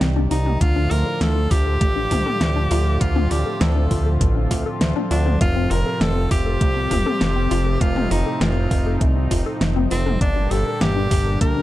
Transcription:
Already playing: analog synth pad C3 D#3 G3 G4 D5
0.01 analog synth bass C2, synth arpeggio sound C4, snare, closed hi-hat
0.16 synth arpeggio sound D4, mid tom
0.31 analog synth bass C2, tenor saxophone D#4, synth arpeggio sound D#4, open hi-hat
0.46 synth arpeggio sound G4, mid tom
0.61 analog synth bass D2, analog synth pad A2 D3 F3 F4, synth arpeggio sound A3, tenor saxophone F4, kick, closed hi-hat
0.76 synth arpeggio sound D4
0.91 analog synth bass D2, synth arpeggio sound F4, tenor saxophone A#4, open hi-hat
1.06 synth arpeggio sound A4
1.21 analog synth bass D2, synth arpeggio sound A3, tenor saxophone A4, snare, closed hi-hat
1.36 synth arpeggio sound D4
1.51 analog synth bass D2, synth arpeggio sound F4, tenor saxophone G4, kick, open hi-hat
1.66 synth arpeggio sound A4
1.81 analog synth bass A1, synth arpeggio sound A3, kick, closed hi-hat
1.96 synth arpeggio sound D4
2.11 analog synth bass D2, synth arpeggio sound F4, kick, open hi-hat, mid tom
2.26 synth arpeggio sound A4, mid tom
2.41 analog synth bass D2, synth arpeggio sound A3, snare, closed hi-hat
2.56 synth arpeggio sound D4
2.71 analog synth bass D2, synth arpeggio sound F4, open hi-hat
2.86 synth arpeggio sound A4
3.01 analog synth bass D2, synth arpeggio sound A3, analog synth pad C4, tenor saxophone F4, kick, closed hi-hat
3.16 synth arpeggio sound D4, mid tom
3.31 analog synth bass D2, synth arpeggio sound F4, tenor saxophone G4, open hi-hat
3.46 synth arpeggio sound A4
3.61 analog synth bass D2, synth arpeggio sound A3, tenor saxophone A4, snare, closed hi-hat
3.76 synth arpeggio sound D4
3.91 analog synth bass D2, synth arpeggio sound F4, kick, open hi-hat
4.06 synth arpeggio sound A4
4.21 analog synth bass A1, synth arpeggio sound A3, kick, closed hi-hat
4.36 synth arpeggio sound D4
4.51 analog synth bass D2, synth arpeggio sound F4, kick, open hi-hat
4.66 synth arpeggio sound A4
4.81 analog synth bass D2, synth arpeggio sound A3, snare, closed hi-hat
4.96 synth arpeggio sound D4, mid tom
5.11 analog synth bass D2, tenor saxophone D4, synth arpeggio sound F4, open hi-hat
5.26 synth arpeggio sound A4, mid tom
5.41 analog synth bass F1, analog synth pad A2 C3, synth arpeggio sound A3, tenor saxophone F4, kick, closed hi-hat
5.56 synth arpeggio sound C4
5.71 analog synth bass F1, synth arpeggio sound F4, tenor saxophone A#4, open hi-hat
5.86 synth arpeggio sound A4
6.01 analog synth bass F1, synth arpeggio sound A3, tenor saxophone A4, snare, closed hi-hat
6.16 synth arpeggio sound C4
6.31 analog synth bass F1, synth arpeggio sound F4, tenor saxophone G4, kick, open hi-hat
6.46 synth arpeggio sound A4
6.61 analog synth bass C2, synth arpeggio sound A3, kick, closed hi-hat
6.76 synth arpeggio sound C4
6.91 analog synth bass F1, synth arpeggio sound F4, kick, open hi-hat, mid tom
7.06 synth arpeggio sound A4, mid tom
7.21 analog synth bass F1, synth arpeggio sound A3, snare, closed hi-hat
7.36 synth arpeggio sound C4
7.51 analog synth bass F1, synth arpeggio sound F4, open hi-hat
7.66 synth arpeggio sound A4
7.81 analog synth bass F1, synth arpeggio sound A3, analog synth pad D#4, tenor saxophone F4, kick, closed hi-hat
7.96 synth arpeggio sound C4, mid tom
8.11 analog synth bass F1, tenor saxophone D#4, synth arpeggio sound F4, open hi-hat
8.26 synth arpeggio sound A4
8.41 analog synth bass F1, synth arpeggio sound A3, tenor saxophone F4, snare, closed hi-hat
8.56 synth arpeggio sound C4
8.71 analog synth bass F1, synth arpeggio sound F4, kick, open hi-hat
8.86 synth arpeggio sound A4
9.01 analog synth bass C2, synth arpeggio sound A3, kick, closed hi-hat
9.16 synth arpeggio sound C4
9.31 analog synth bass F1, synth arpeggio sound F4, kick, open hi-hat
9.46 synth arpeggio sound A4
9.61 analog synth bass F1, synth arpeggio sound A3, snare, closed hi-hat
9.76 synth arpeggio sound C4, mid tom
9.91 analog synth bass F1, tenor saxophone C4, synth arpeggio sound F4, open hi-hat
10.06 synth arpeggio sound A4, mid tom
10.21 analog synth bass G1, analog synth pad A#2 D3 G3 D4 G4, synth arpeggio sound A#3, tenor saxophone D4, kick, closed hi-hat
10.36 synth arpeggio sound D4
10.51 analog synth bass G1, synth arpeggio sound G4, tenor saxophone A4, open hi-hat
10.66 synth arpeggio sound A#4
10.81 analog synth bass G1, synth arpeggio sound A#3, tenor saxophone G4, snare, closed hi-hat
10.96 synth arpeggio sound D4
11.11 analog synth bass G1, synth arpeggio sound G4, kick, open hi-hat
11.26 synth arpeggio sound A#4
11.41 analog synth bass D2, synth arpeggio sound A#3, tenor saxophone A#4, kick, closed hi-hat
11.56 synth arpeggio sound D4

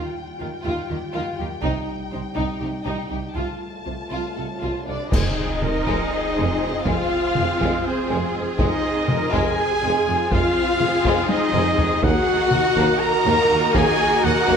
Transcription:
Already playing: french horn section G3 F4, viola section F4, violin section F4 G5
0.40 double bass section D#2, cello section D#3, viola section F4, violin section A#4
0.64 double bass section D#2, cello section D#3, viola section F4, violin section F4
0.88 double bass section D#2, cello section D#3, viola section F4, violin section G4
1.13 double bass section D#2, cello section D#3, viola section F4, violin section F4
1.37 double bass section D#2, cello section D#3, viola section F4, violin section G4
1.63 double bass section C2, cello section C3, violin section D#4, viola section D#4, french horn section D#4, taiko
2.12 double bass section C2, cello section C3, viola section D#4, violin section C5
2.36 double bass section C2, cello section C3, viola section D#4, violin section D#4
2.60 double bass section C2, cello section C3, viola section D#4, violin section G4
2.85 double bass section C2, cello section C3, viola section D#4, violin section D#4
3.09 double bass section C2, cello section C3, viola section D#4, violin section G4
3.35 double bass section C2, cello section C3, french horn section A3 F4, viola section F4, violin section F4 A5
3.85 double bass section C2, cello section C3, viola section F4, violin section C5
4.10 double bass section C2, cello section C3, violin section F4, viola section F4
4.36 double bass section C2, cello section C3, viola section F4, violin section A4
4.61 double bass section C2, cello section C3, viola section F4, violin section F4
4.86 double bass section C2, cello section C3, viola section D4 F4, french horn section D4, violin section A4 D5, trumpet D5
5.10 tuba F1, double bass section F2, violin section G#3 C4 D#5, string section C4 F4 G#4 C5, viola section D#4, french horn section D#4, cello section G#4, trumpet D#5, concert bass drum, taiko, crash
5.62 tuba F1, double bass section F2, violin section G#3, cello section A#4, taiko mid
5.87 tuba F1, double bass section F2, violin section G#3, taiko
6.12 cello section G#4
6.36 tuba F1, double bass section F2, violin section G#3
6.62 tuba F1, double bass section F2, violin section G#3
6.85 tuba F1, double bass section F2, violin section G#3 F5, viola section F4, french horn section F4, cello section F4, trumpet F5, taiko
7.35 tuba F1, double bass section F2, violin section G#3, taiko mid
7.60 tuba F1, double bass section F2, violin section G#3, taiko
7.84 viola section C4, french horn section C4, cello section G#4, trumpet C5, violin section C5
8.09 tuba F1, double bass section F2, violin section G#3
8.33 tuba F1, double bass section F2, violin section G#3
8.57 tuba F1, double bass section F2, violin section G#3 D#5, viola section D#4, french horn section D#4, trumpet D#5, taiko
9.08 tuba F1, double bass section F2, violin section G#3, cello section A#4, taiko mid
9.32 tuba F1, double bass section F2, violin section G#3 G#5, viola section G#4, french horn section G#4, trumpet G#5, taiko
9.58 cello section G#4
9.82 tuba F1, double bass section F2, violin section G#3
10.07 tuba F1, double bass section F2, violin section G#3, cello section F4
10.30 tuba F1, double bass section F2, violin section G#3 C4 F5, string section C4 F4 G#4 C5, viola section F4, french horn section F4, trumpet F5, taiko
10.80 tuba F1, double bass section F2, violin section G#3, cello section G#4, taiko mid
11.05 tuba F1, double bass section F2, violin section G#3, taiko
11.28 viola section D#4, french horn section D#4, trumpet D#5, violin section D#5, taiko high
11.53 tuba F1, double bass section F2, violin section G#3, taiko mid
11.78 tuba F1, double bass section F2, violin section G#3, taiko low
12.02 tuba D#2, double bass section D#2, string section A#3 D#4 A#4 D#5, violin section A#3 D#4 F#5, viola section F#4, french horn section F#4, trumpet F#5, taiko
12.51 tuba D#2, double bass section D#2, violin section A#3, cello section F#4, taiko mid
12.76 tuba D#2, double bass section D#2, violin section A#3, taiko
13.01 cello section F#4, viola section A#4, french horn section A#4, trumpet A#5, violin section A#5
13.25 double bass section D#2, tuba D#2, violin section A#3
13.50 tuba D#2, double bass section D#2, violin section A#3
13.74 tuba D#2, double bass section D#2, violin section A#3 G#5, viola section G#4, french horn section G#4, trumpet G#5, taiko
14.23 tuba D#2, double bass section D#2, violin section A#3 F#5, french horn section F#4, viola section F#4, cello section A#4, trumpet F#5, taiko mid
14.48 tuba D#2, double bass section D#2, violin section A#3, taiko

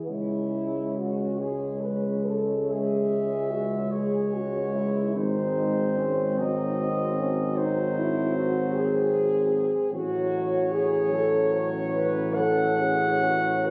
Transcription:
0.07 tuba C#2, euphonium G#3 C#4, french horn section E4
0.96 french horn section F#4
1.39 french horn section G#4
1.81 french horn section B4
2.24 french horn section A4
2.68 french horn section G#4, cornet E5
3.50 french horn section F#4
3.91 french horn section G#4, cornet C#5
4.33 french horn section F#4
4.74 french horn section E4
5.15 tuba G#1, euphonium C4, french horn section D#4, cornet C5
5.95 french horn section C#4
6.37 euphonium F#3, french horn section D#4, cornet D#5
6.77 french horn section C4
7.18 french horn section C#4
7.57 french horn section D#4, cornet C5
7.96 french horn section E4
8.34 french horn section F#4
8.73 french horn section G#4
9.91 tuba A1, euphonium F#3 C#4, french horn section F#4, cornet C#5
10.72 french horn section G#4
11.09 euphonium F#3 C#4, french horn section A4
11.52 french horn section C#5
11.93 french horn section B4
12.33 euphonium F#3 C#4, french horn section A4, cornet F#5
12.78 french horn section G#4
13.21 french horn section F#4
13.66 french horn section B4, cornet F#5

